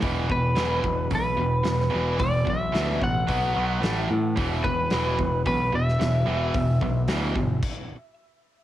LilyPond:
<<
  \new Staff \with { instrumentName = "Lead electric guitar" } { \time 4/4 \key b \phrygian \tempo 4 = 111 r8 b'4. b'2 | d''8 e''4 fis''4. r4 | r8 b'4. b'8 e''4.~ | e''2. r4 | }
  \new Staff \with { instrumentName = "Distorted electric guitar" } { \clef bass \time 4/4 \key b \phrygian <e, b, e>8 <e, b,>8 <e, b, e>8 <e, b,>8 <e, b,>8 <e, b,>8 <e, b,>8 <e, b, e>8 | <e, b,>8 <e, b,>8 <e, b, e>8 <e, b,>8 <b, fis b>8 <b, fis b>8 <a, e a>8 <a, e>8 | <e, b, e>8 <e, b,>8 <e, b, e>8 <e, b,>8 <e, b,>8 <e, b,>8 <e, b,>8 <e, b, e>8 | <e, b,>8 <e, b,>8 <e, b, e>8 <e, b,>8 r2 | }
  \new Staff \with { instrumentName = "Overdriven electric guitar" } { \clef bass \time 4/4 \key b \phrygian <e, b, e>8 <e, b,>8 <e, b, e>8 <e, b,>8 <e, b,>8 <e, b,>8 <e, b,>8 <e, b, e>8 | <e, b,>8 <e, b,>8 <e, b, e>8 <e, b,>8 <b, fis b>8 <b, fis b>8 <a, e a>8 <a, e>8 | <e, b, e>8 <e, b,>8 <e, b, e>8 <e, b,>8 <e, b,>8 <e, b,>8 <e, b,>8 <e, b, e>8 | <e, b,>8 <e, b,>8 <e, b, e>8 <e, b,>8 r2 | }
  \new Staff \with { instrumentName = "Picked electric bass" } { \clef bass \time 4/4 \key b \phrygian e,,8 e,,8 e,,8 e,,8 b,,8 e,,8 e,,8 e,,8 | e,,8 b,,8 d,8 a,,8 b,,8 b,,8 a,,8 a,8 | e,,8 e,,8 e,,8 e,,8 b,,8 e,,8 e,,8 e,,8 | e,,8 b,,8 d,8 g,,8 r2 | }
  \new DrumStaff \with { instrumentName = "Drums" } \drummode { \time 4/4 <hho bd>8 bd8 <hho sn>8 bd8 <hho bd>4 <hho sn>16 sn8. | <hho bd>8 bd8 <hho sn>8 bd8 <hho bd>4 <hho sn>4 | <hho bd>8 bd8 <hho sn>8 bd8 <hho bd>8. sn16 <hho sn>4 | <hho bd>8 bd8 <hho sn>8 bd8 <cymc bd>4 r4 | }
>>